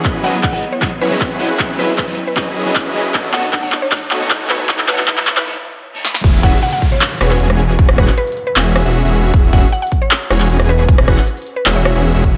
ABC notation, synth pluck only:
X:1
M:4/4
L:1/16
Q:1/4=155
K:E
V:1 name="Synth pluck"
z2 f z f f z c z2 B B z4 | z2 B z B3 B6 z3 | z2 f z f f z c z6 B B | z2 B4- B B z8 |
z2 f z f f z c z2 B B z4 | z2 B z B3 B6 z3 | z2 f z f f z c z6 B B | z2 B4- B B c c c3 z3 |]